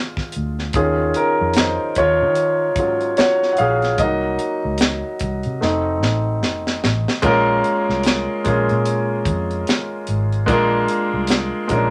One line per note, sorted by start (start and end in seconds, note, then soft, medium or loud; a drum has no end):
0.17 kick medium
0.17 snare soft
0.32 closed hi-hat medium
0.36 0.72 D2 medium
0.59 snare soft
0.73 1.12 D#2 medium
0.73 3.95 D#3 medium
0.73 1.14 C#4 medium
0.73 1.98 F4 medium
0.73 1.17 G#4 medium
0.73 kick loud
0.73 closed hi-hat medium
1.14 1.54 C#4 medium
1.14 1.58 A#4 medium
1.14 closed hi-hat medium
1.41 1.77 F2 medium
1.54 1.94 C5 medium
1.54 snare loud
1.54 closed hi-hat medium
1.58 1.95 D#4 medium
1.95 2.23 D#2 medium
1.95 3.17 C#5 medium
1.95 kick medium
1.95 closed hi-hat medium
1.99 2.78 F4 medium
2.22 2.77 D#3 loud
2.35 closed hi-hat medium
2.76 3.14 G#2 medium
2.76 3.14 F#3 soft
2.76 3.15 C#4 soft
2.76 3.15 F4 soft
2.76 kick medium
2.76 closed hi-hat medium
3.01 closed hi-hat soft
3.17 3.52 F#4 medium
3.17 3.54 C#5 medium
3.17 snare loud
3.17 closed hi-hat medium
3.43 snare soft
3.53 3.58 F#5 medium
3.57 3.96 A#1 medium
3.57 3.97 G#4 medium
3.57 4.00 F5 medium
3.57 closed hi-hat medium
3.82 snare soft
3.82 closed hi-hat soft
3.98 4.36 C2 medium
3.98 4.56 F#3 medium
3.98 4.57 A#3 soft
3.98 4.57 D#4 medium
3.98 6.39 F#4 medium
3.98 6.38 D#5 medium
3.98 kick loud
3.98 closed hi-hat medium
4.39 closed hi-hat medium
4.65 5.01 C#2 medium
4.78 snare loud
4.78 closed hi-hat medium
5.19 5.43 C2 medium
5.19 kick medium
5.19 closed hi-hat medium
5.43 5.60 C3 medium
5.43 closed hi-hat soft
5.61 6.03 F1 medium
5.61 6.18 A3 medium
5.61 6.18 C4 soft
5.61 6.18 D#4 medium
5.61 snare medium
6.03 6.44 A1 medium
6.03 snare medium
6.43 6.80 F1 medium
6.43 snare medium
6.67 snare medium
6.84 7.06 A1 medium
6.84 snare medium
7.08 snare medium
7.22 7.61 A#1 medium
7.22 8.37 G#3 loud
7.22 8.38 A#3 loud
7.22 8.38 C#4 medium
7.22 8.39 F4 loud
7.22 8.39 A#4 loud
7.22 kick loud
7.22 closed hi-hat medium
7.64 closed hi-hat medium
7.89 8.26 C2 medium
7.89 snare soft
8.03 snare loud
8.03 closed hi-hat medium
8.44 8.68 A#1 medium
8.44 9.97 G#3 medium
8.44 9.97 A#3 medium
8.44 9.98 C#4 medium
8.44 9.99 F4 medium
8.44 9.99 G#4 medium
8.44 kick medium
8.44 closed hi-hat medium
8.69 9.28 A#2 medium
8.69 closed hi-hat soft
8.85 closed hi-hat medium
9.25 9.63 F2 medium
9.25 kick medium
9.25 closed hi-hat medium
9.51 closed hi-hat soft
9.67 snare medium
9.67 closed hi-hat medium
10.07 10.45 G#1 medium
10.07 closed hi-hat medium
10.32 closed hi-hat soft
10.46 10.85 A#1 medium
10.46 11.61 G#3 loud
10.46 11.62 A#3 loud
10.46 11.62 D4 loud
10.46 11.63 F4 loud
10.46 11.63 A#4 loud
10.46 kick loud
10.46 closed hi-hat medium
10.88 closed hi-hat medium
11.14 11.50 C2 medium
11.27 snare loud
11.27 closed hi-hat medium
11.68 11.90 A#1 medium
11.68 11.90 G#3 medium
11.68 11.90 A#3 medium
11.68 11.77 C#4 medium
11.68 11.90 F4 medium
11.68 11.90 A#4 medium
11.68 kick medium
11.68 closed hi-hat medium
11.76 11.90 D4 medium